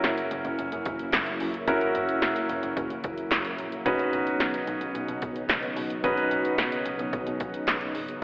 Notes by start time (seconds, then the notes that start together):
Already playing: C#3 F#3 A#3 C#4 E4 F#4 A#4
0.04 F#1, snare, closed hi-hat
0.18 closed hi-hat
0.31 F#1, closed hi-hat
0.45 F#1, closed hi-hat
0.58 F#1, closed hi-hat
0.72 F#2, closed hi-hat
0.85 F#1, kick, closed hi-hat
0.99 closed hi-hat
1.13 F#1, snare, clap, closed hi-hat
1.26 closed hi-hat
1.40 F#2, open hi-hat
1.54 closed hi-hat
1.68 F#1 C#4 E4 F#4 A#4, kick, closed hi-hat
1.81 closed hi-hat
1.95 F#1, closed hi-hat
2.09 closed hi-hat
2.22 F#1, snare, closed hi-hat
2.36 closed hi-hat
2.49 F#1, closed hi-hat
2.63 F#1, closed hi-hat
2.77 F#1, kick, closed hi-hat
2.90 F#2, closed hi-hat
3.04 F#1, kick, closed hi-hat
3.18 closed hi-hat
3.31 F#1, snare, clap, closed hi-hat
3.45 closed hi-hat
3.58 A#1, closed hi-hat
3.72 closed hi-hat
3.86 B1 C#3 B3 C#4 D#4 F#4 B4, kick, closed hi-hat
3.99 closed hi-hat
4.13 B1, closed hi-hat
4.27 closed hi-hat
4.40 B1, snare, closed hi-hat
4.54 closed hi-hat
4.67 B1, closed hi-hat
4.81 B1, closed hi-hat
4.95 B1, closed hi-hat
5.08 B2, closed hi-hat
5.22 B1, kick, closed hi-hat
5.36 closed hi-hat
5.49 B1, snare, clap, closed hi-hat
5.63 closed hi-hat
5.77 B2, open hi-hat
5.90 closed hi-hat
6.04 B1 C#4 D#4 F#4 B4, kick, closed hi-hat
6.17 closed hi-hat
6.31 B1, closed hi-hat
6.45 closed hi-hat
6.58 B1, snare, closed hi-hat
6.72 closed hi-hat
6.86 B1, closed hi-hat
6.99 B1, closed hi-hat
7.13 B1, kick, closed hi-hat
7.27 B2, closed hi-hat
7.40 B1, kick, closed hi-hat
7.54 closed hi-hat
7.67 B1, snare, clap, closed hi-hat
7.81 closed hi-hat
7.95 G#1, open hi-hat
8.09 closed hi-hat